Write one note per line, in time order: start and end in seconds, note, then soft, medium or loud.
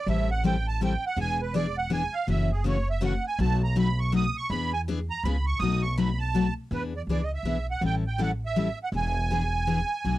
0.07 0.95 A1 loud
0.07 0.28 E3 medium
0.07 0.28 G3 medium
0.07 0.28 C4 medium
0.07 0.28 E4 medium
0.07 0.28 A4 medium
0.07 0.30 E5 medium
0.31 0.44 F#5 medium
0.44 0.54 E3 medium
0.44 0.55 G3 loud
0.44 0.55 C4 medium
0.44 0.55 E4 loud
0.44 0.55 A4 loud
0.44 0.67 G5 medium
0.68 0.81 A5 loud
0.81 0.92 E3 medium
0.81 0.92 G3 medium
0.81 0.92 C4 loud
0.81 0.92 E4 loud
0.81 0.92 A4 loud
0.81 1.05 G5 medium
1.06 1.18 F#5 loud
1.16 2.05 E1 medium
1.16 1.38 E3 medium
1.16 1.38 B3 medium
1.16 1.38 D4 medium
1.16 1.38 G#4 medium
1.20 1.41 G#5 loud
1.42 1.54 B4 medium
1.54 1.65 E3 medium
1.54 1.65 B3 medium
1.54 1.66 D4 medium
1.54 1.66 G#4 loud
1.54 1.77 D5 medium
1.78 1.91 F#5 loud
1.90 2.01 E3 medium
1.90 2.02 B3 medium
1.90 2.02 D4 medium
1.90 2.02 G#4 medium
1.90 2.14 G#5 loud
2.14 2.27 F5 loud
2.27 3.16 F#1 loud
2.27 2.48 C#3 medium
2.27 2.49 E3 medium
2.27 2.49 A3 medium
2.27 2.49 C#4 medium
2.27 2.49 F#4 medium
2.27 2.51 E5 loud
2.52 2.65 G#4 medium
2.64 2.75 C#3 medium
2.64 2.76 E3 medium
2.64 2.76 A3 medium
2.64 2.76 C#4 medium
2.64 2.76 F#4 loud
2.64 2.89 C#5 medium
2.90 3.02 E5 medium
3.01 3.12 C#3 loud
3.01 3.13 E3 medium
3.01 3.13 A3 medium
3.01 3.13 C#4 loud
3.01 3.13 F#4 loud
3.01 3.25 F#5 medium
3.27 3.40 G#5 loud
3.39 4.27 B1 loud
3.39 3.60 B2 medium
3.39 3.60 F#3 medium
3.39 3.60 A3 medium
3.39 3.60 D#4 medium
3.39 3.60 F#4 medium
3.39 3.62 A5 loud
3.64 3.76 A#5 medium
3.76 3.87 B2 medium
3.76 3.87 F#3 medium
3.76 3.87 A3 medium
3.76 3.87 D#4 medium
3.76 3.87 F#4 loud
3.76 3.99 B5 loud
3.99 4.12 C#6 medium
4.12 4.23 B2 loud
4.12 4.24 F#3 medium
4.12 4.23 A3 loud
4.12 4.24 D#4 medium
4.12 4.24 F#4 medium
4.12 4.36 D#6 loud
4.37 4.50 C#6 loud
4.50 5.09 E2 loud
4.50 4.71 E3 medium
4.50 4.71 B3 medium
4.50 4.71 D4 medium
4.50 4.72 G#4 medium
4.50 4.72 B5 loud
4.73 4.81 G#5 loud
4.88 4.98 E3 loud
4.88 4.99 B3 medium
4.88 4.99 D4 medium
4.88 4.98 G#4 loud
5.10 5.23 A#5 loud
5.23 5.53 C#2 medium
5.23 5.35 C#3 medium
5.23 5.35 G#3 medium
5.23 5.35 B3 loud
5.23 5.35 F4 medium
5.23 5.36 G#4 medium
5.23 5.46 B5 medium
5.46 5.60 C#6 loud
5.59 6.49 B1 loud
5.59 5.82 B2 medium
5.59 5.82 F#3 medium
5.59 5.82 A3 medium
5.59 5.82 D#4 medium
5.59 5.82 F#4 medium
5.59 5.82 D#6 loud
5.82 5.96 C#6 loud
5.97 6.08 B2 medium
5.97 6.08 F#3 loud
5.97 6.09 A3 medium
5.97 6.09 D#4 medium
5.97 6.09 F#4 medium
5.97 6.20 B5 medium
6.19 6.54 A5 loud
6.34 6.45 B2 loud
6.34 6.45 F#3 loud
6.34 6.46 A3 loud
6.34 6.46 D#4 medium
6.34 6.46 F#4 loud
6.71 7.01 E2 medium
6.71 6.92 E3 medium
6.71 6.92 B3 medium
6.71 6.93 D4 medium
6.71 6.93 G#4 medium
6.71 6.83 B4 medium
6.96 7.02 D5 medium
7.07 7.39 C#2 medium
7.07 7.20 E3 medium
7.07 7.20 B3 medium
7.07 7.20 D4 medium
7.07 7.20 G#4 medium
7.11 7.24 D5 medium
7.24 7.32 D#5 medium
7.34 7.67 E5 medium
7.43 7.75 B1 medium
7.43 7.56 E3 medium
7.43 7.56 B3 medium
7.43 7.56 D4 medium
7.43 7.56 G#4 medium
7.71 7.83 F#5 medium
7.81 8.70 A1 medium
7.81 8.03 E3 medium
7.81 8.03 G3 medium
7.81 8.03 C#4 medium
7.81 8.03 E4 medium
7.81 8.03 A4 medium
7.86 7.95 G5 loud
8.07 8.21 G5 medium
8.18 8.30 E3 medium
8.18 8.30 G3 medium
8.18 8.30 C#4 medium
8.18 8.30 E4 medium
8.18 8.30 A4 medium
8.18 8.31 F#5 loud
8.46 8.79 E5 medium
8.56 8.67 E3 medium
8.56 8.67 G3 medium
8.56 8.67 C#4 medium
8.56 8.68 E4 loud
8.56 8.68 A4 medium
8.84 8.89 F#5 medium
8.92 9.81 E1 medium
8.92 9.14 E3 medium
8.92 9.14 B3 medium
8.92 9.15 D4 medium
8.92 9.15 G#4 medium
8.96 10.18 G#5 loud
9.30 9.41 E3 medium
9.30 9.42 B3 medium
9.30 9.42 D4 medium
9.30 9.42 G#4 medium
9.67 9.78 E3 medium
9.67 9.78 B3 medium
9.67 9.79 D4 medium
9.67 9.79 G#4 medium
10.05 10.18 B1 medium
10.05 10.18 B2 medium
10.05 10.18 F#3 medium
10.05 10.18 A3 medium
10.05 10.18 D4 medium
10.05 10.18 F#4 medium